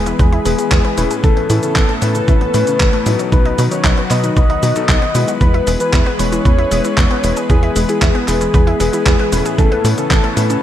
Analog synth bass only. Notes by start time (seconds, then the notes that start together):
Already playing: E1
0.19 E2
0.46 E1
0.72 E2
0.98 E1
1.24 A1
1.50 A2
1.76 A1
2.02 A2
2.28 A1
2.54 A2
2.80 A1
3.06 A2
3.32 B1
3.58 B2
3.84 B1
4.11 B2
4.37 B1
4.63 B2
4.89 B1
5.15 B2
5.41 E2
5.67 E1
5.93 E2
6.19 E1
6.45 E2
6.71 E1
6.98 E2
7.24 E1
7.50 E2
7.76 E1
8.02 E2
8.28 E1
8.54 E2
8.80 E1
9.06 E2
9.32 E1
9.58 A1
9.84 A2
10.11 A1
10.37 A2